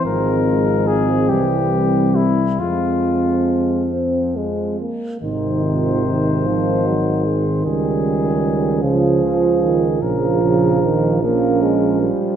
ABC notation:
X:1
M:6/8
L:1/8
Q:3/8=49
K:Fm
V:1 name="Flugelhorn"
B2 A G2 =E | F3 z3 | c6 | A3 A3 |
B3 B2 z |]
V:2 name="French horn section"
C6 | C4- C z | E F E4 | D3 F3 |
F3 D3 |]
V:3 name="Euphonium" clef=bass
A,3 G,3 | A,3 C A, B, | E,3 F, _G, A, | G,3 F,3 |
F,3 B, A, G, |]
V:4 name="Trombone" clef=bass
F,3 =E,2 z | F,4- F, z | C,3 E,3- | E,3 D, F, E, |
D, D, E, F,3 |]
V:5 name="Tuba" clef=bass
A,,,3 C,,3 | F,,4- F,, z | A,,,6 | D,,6 |
B,,,4- B,,, z |]